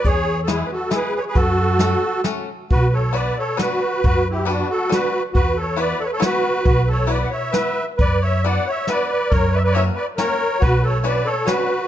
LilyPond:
<<
  \new Staff \with { instrumentName = "Accordion" } { \time 3/4 \key fis \minor \tempo 4 = 137 << { cis''8.~ cis''32 a'32 gis'16. b'32 a'8 b'8 b'32 cis''32 b'16 | a'2 r4 | \key b \minor b'8 cis''8 d''8 cis''8 b'4 | b'8 g'8 fis'8 a'8 b'8. r16 |
b'8 cis''8 d''8 cis''32 b'32 cis''16 b'4 | b'8 cis''8 d''16. fis''32 e''8 e''8. r16 | d''8 e''8 fis''8 e''8 d''8 d''8 | cis''8 d''32 e''32 d''16 e''8 d''8 cis''4 |
b'8 cis''8 d''8 cis''8 b'4 | } \\ { gis'4 e'8 fis'8 gis'8 gis'16 gis'16 | fis'2 r4 | fis'8 a'8 b'8 a'8 fis'4 | fis'8 e'8 d'8 fis'8 fis'8. r16 |
fis'8 a'8 b'8 a'16 a'16 fis'4 | fis'8 a'8 b'8 cis''8 b'8. r16 | b'8 cis''8 d''8 cis''8 b'8 b'8 | ais'8 b'16 b'16 cis''8 b'8 ais'4 |
fis'8 a'8 b'8 a'8 fis'4 | } >> }
  \new Staff \with { instrumentName = "Five-string banjo" } { \time 3/4 \key fis \minor r4 <gis b e' gis'>8 r8 <gis b e' gis'>8 r8 | r4 <a cis' fis' a'>8 r8 <a cis' fis' a'>8 r8 | \key b \minor r4 <b d' fis' b'>8 r8 <b d' fis' b'>8 r8 | r4 <b d' fis' b'>8 r8 <b d' fis' b'>8 r8 |
r4 <b e' fis' b'>8 r8 <b e' fis' b'>8 r8 | r4 <b e' fis' b'>8 r8 <b e' fis' b'>8 r8 | r4 <b d' fis' b'>8 r8 <b d' fis' b'>8 r8 | r4 <ais cis' fis' ais'>8 r8 <ais cis' fis' ais'>8 r8 |
r4 <cis' d' fis' b'>8 r8 <cis' d' fis' b'>8 r8 | }
  \new Staff \with { instrumentName = "Upright bass" } { \clef bass \time 3/4 \key fis \minor e,2 r4 | fis,2 r4 | \key b \minor b,,2 r4 | fis,2 r4 |
e,2 r4 | b,,2 r4 | fis,2 r4 | fis,2 r4 |
b,,2 r4 | }
  \new DrumStaff \with { instrumentName = "Drums" } \drummode { \time 3/4 <hh bd>4 <hh sn>4 <hh sn>4 | <hh bd>4 <hh sn>4 <hh sn>4 | <hh bd>4 hh4 <hh sn>4 | <hh bd>4 hh4 <hh sn>4 |
<hh bd>4 hh4 <hh sn>4 | <hh bd>4 hh4 <hh sn>4 | <hh bd>4 hh4 <hh sn>4 | <hh bd>4 hh4 <hh sn>4 |
<hh bd>4 hh4 <hh sn>4 | }
>>